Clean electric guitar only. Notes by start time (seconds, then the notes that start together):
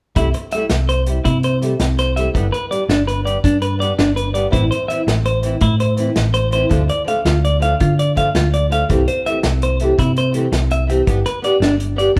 0.17 E4
0.35 muted clean electric guitar stroke
0.53 E5
0.89 C5
1.25 E4
1.44 C5
1.99 C5
2.16 E5
2.52 B4
2.71 D5
2.89 D4
3.07 B4
3.25 D5
3.44 D4
3.62 B4
3.80 D5
3.99 D4
4.16 B4
4.34 D5
4.52 E4
4.71 C5
4.88 E5
5.26 C5
5.62 E4
5.80 C5
6.34 C5
6.53 C5
6.90 D5
7.08 F5
7.26 F4
7.45 D5
7.62 F5
7.81 F4
7.99 D5
8.17 F5
8.36 F4
8.54 D5
8.72 F5
8.90 muted clean electric guitar stroke
9.08 C5
9.26 E5
9.63 C5
9.99 E4
10.18 C5
10.72 E5
10.90 muted clean electric guitar stroke
11.26 B4
11.44 D5
11.62 D4
11.98 D5